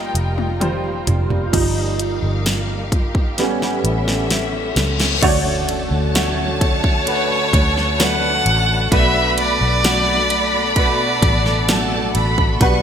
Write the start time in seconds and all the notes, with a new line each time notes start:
Already playing: G1 G3 A#3 D#4 F4 A#4 D#5 G5
0.14 F1 D#4, closed hi-hat
0.37 F4, high tom
0.60 G3 D#4 F4 C5, closed hi-hat, mid tom
0.84 A#3
1.07 F1 D#4, closed hi-hat, floor tom
1.30 A#3, floor tom
1.52 G1 F3 G3 D#4 F4 G4 A#4 F5, kick, closed hi-hat, crash
1.76 A#3
1.99 D#4, closed hi-hat
2.22 G1 F4
2.46 D#4, snare, closed hi-hat
2.69 A#3
2.92 F4, kick, closed hi-hat
3.15 D#4, kick
3.37 A1 A2 G3 B3 C#4 A4 E5, snare, closed hi-hat, reverse cymbal
3.61 C#4, snare
3.84 A1 E4, closed hi-hat
4.07 A4, snare
4.30 E4, snare, closed hi-hat
4.53 C#4
4.76 C#2 A4, snare, closed hi-hat
4.99 E4, snare, closed hi-hat
5.22 D2 D3 A3 D4 F#4 C#5 A5, kick, crash, ride, impact
5.45 C#4
5.68 A3, ride
5.91 D2 A4
6.15 F#3 A3 D4 F#4 C#5, snare, ride
6.38 C#4
6.61 A3 C#5, kick, ride
6.83 A4, kick
7.06 D3 A3 D4 F#4 B4, ride
7.30 C#4
7.53 D2 A3, kick, ride
7.76 A4, snare
7.98 F#3 A3 D4 F#4 B4 F#5, snare, ride
8.22 C#4
8.45 A1 A3, ride
8.68 A4
8.91 B1 B2 A3 B3 D4 F#4 A4 B4 D5 E5 B5, kick, ride
9.15 D4
9.37 A3 D5, ride
9.60 B1 A4
9.83 F#3 A3 D4 F#4 D5 B5, snare, ride
10.07 D4
10.30 A3, ride
10.53 A4
10.76 B2 A3 D4 F#4 B4 D5, kick, ride
10.99 D4
11.22 A1 A3, kick, ride
11.46 A4, snare
11.68 F#3 A3 D4 F#4 A4 A5, snare, ride
11.92 D4
12.15 A1 A3 B5, ride
12.38 A4, kick
12.61 B1 B2 G3 D4 F#4 B4 F#5 C#6, kick, ride